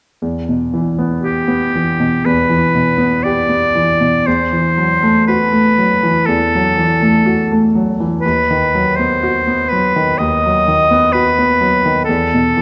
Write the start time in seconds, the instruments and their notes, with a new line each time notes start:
0.22 grand piano E2
0.49 grand piano B2
0.74 grand piano E3
0.99 grand piano B3
1.24 oboe G4, grand piano G4
1.48 grand piano B3
1.75 grand piano E3
2.00 grand piano B2
2.25 grand piano E2, oboe B4
2.50 grand piano E3
2.75 grand piano B2
2.98 grand piano B3
3.23 grand piano G4, oboe D5
3.49 grand piano B3
3.75 grand piano E3
4.00 grand piano B2
4.27 grand piano E2, oboe C5
4.53 grand piano E3
4.78 grand piano F#3
5.03 grand piano A3
5.27 grand piano F#4, oboe B4
5.52 grand piano A3
5.78 grand piano F#3
6.03 grand piano E3
6.26 grand piano E2, oboe A4
6.55 grand piano F#3
6.77 grand piano E3
7.02 grand piano A3
7.26 grand piano F#4
7.52 grand piano A3
7.75 grand piano F#3
8.00 grand piano E3
8.21 oboe B4
8.26 grand piano D#2
8.50 grand piano D#3
8.75 grand piano F#3
8.96 grand piano B3, oboe C5
9.23 grand piano F#4
9.47 grand piano B3
9.69 grand piano F#3, oboe B4
9.96 grand piano D#3
10.18 grand piano D#2, oboe D#5
10.46 grand piano F#3
10.68 grand piano D#3
10.91 grand piano B3
11.12 grand piano F#4, oboe B4
11.38 grand piano B3
11.61 grand piano F#3
11.85 grand piano D#3
12.05 oboe A4
12.09 grand piano E2
12.34 grand piano B2
12.57 grand piano E3